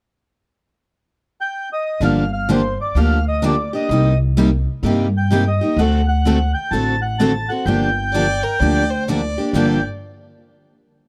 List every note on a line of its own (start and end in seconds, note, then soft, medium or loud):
1.41 1.69 G5 medium
1.73 2.01 D#5 medium
2.00 2.76 G1 medium
2.00 2.23 D3 medium
2.00 2.23 F3 medium
2.00 2.23 A#3 medium
2.00 2.23 D4 medium
2.00 2.24 G4 medium
2.00 2.31 F5 medium
2.33 2.50 F5 medium
2.49 2.60 D3 medium
2.49 2.60 F3 medium
2.49 2.61 A#3 medium
2.49 2.61 D4 medium
2.49 2.61 G4 medium
2.49 2.78 C5 medium
2.81 2.97 D5 medium
2.95 3.71 D2 medium
2.95 3.18 D3 medium
2.95 3.18 F3 medium
2.95 3.18 A#3 medium
2.95 3.18 D4 medium
2.95 3.18 G4 medium
2.95 3.25 F5 medium
3.28 3.45 D#5 medium
3.42 3.54 D3 medium
3.42 3.54 F3 medium
3.42 3.54 A#3 medium
3.42 3.55 D4 medium
3.42 3.54 G4 medium
3.42 3.72 D5 medium
3.73 3.90 A#3 soft
3.73 3.90 D4 medium
3.73 3.89 G4 soft
3.73 4.18 D#5 medium
3.89 4.65 C2 medium
3.89 4.12 C3 medium
3.89 4.12 G3 medium
3.89 4.12 A#3 medium
3.89 4.12 D#4 medium
3.89 4.13 G4 medium
4.37 4.49 C3 medium
4.37 4.49 G3 medium
4.37 4.49 A#3 medium
4.37 4.49 D#4 medium
4.37 4.49 G4 medium
4.83 5.59 G2 medium
4.83 5.06 C3 medium
4.83 5.06 G3 medium
4.83 5.06 A#3 medium
4.83 5.06 D#4 medium
4.83 5.06 G4 medium
5.17 5.49 G5 medium
5.31 5.42 C3 medium
5.31 5.43 G3 medium
5.31 5.43 A#3 medium
5.31 5.43 D#4 medium
5.31 5.43 G4 medium
5.47 5.80 D#5 medium
5.61 5.79 A#3 soft
5.61 5.78 D#4 medium
5.61 5.78 G4 medium
5.76 6.53 D2 medium
5.76 6.00 D3 medium
5.76 6.00 A3 medium
5.76 6.01 C4 medium
5.76 6.01 F#4 medium
5.76 6.01 A4 medium
5.76 6.07 F#5 medium
6.08 6.52 F#5 medium
6.25 6.37 D3 medium
6.25 6.37 A3 medium
6.25 6.38 C4 medium
6.25 6.38 F#4 medium
6.25 6.38 A4 medium
6.54 6.72 G5 medium
6.71 7.47 A1 medium
6.71 6.94 D3 medium
6.71 6.94 A3 medium
6.71 6.95 C4 medium
6.71 6.95 F#4 medium
6.71 6.95 A4 medium
6.71 7.00 A5 loud
7.02 7.20 F#5 medium
7.19 7.31 D3 medium
7.19 7.31 A3 medium
7.19 7.31 C4 medium
7.19 7.32 F#4 medium
7.19 7.32 A4 medium
7.19 7.50 A5 medium
7.49 7.67 C4 soft
7.49 7.67 F#4 medium
7.49 7.66 A4 soft
7.49 7.65 F#5 medium
7.66 8.41 G1 medium
7.66 7.89 D3 medium
7.66 7.89 F3 medium
7.66 7.89 A#3 medium
7.66 7.89 D4 medium
7.66 7.89 G4 medium
7.66 9.03 G5 loud
8.13 8.25 D3 medium
8.13 8.26 F3 medium
8.13 8.26 A#3 medium
8.13 8.26 D4 medium
8.13 8.26 G4 medium
8.13 8.45 D5 medium
8.43 8.61 A#4 medium
8.60 9.36 D2 medium
8.60 8.83 D3 medium
8.60 8.83 F3 medium
8.60 8.83 A#3 medium
8.60 8.83 D4 medium
8.60 8.83 G4 medium
8.60 8.92 D5 medium
8.90 9.10 C5 medium
9.08 9.20 D3 medium
9.08 9.20 F3 medium
9.08 9.20 A#3 medium
9.08 9.20 D4 medium
9.08 9.20 G4 medium
9.08 9.54 D5 medium
9.38 9.54 A#3 soft
9.38 9.54 D4 soft
9.38 9.54 G4 soft
9.53 9.82 G1 medium
9.53 9.78 G2 medium
9.53 9.79 D3 medium
9.53 9.79 F3 medium
9.53 9.79 A#3 medium
9.53 9.79 D4 medium
9.53 9.79 G4 medium
9.53 9.82 D5 medium
9.53 9.83 G5 medium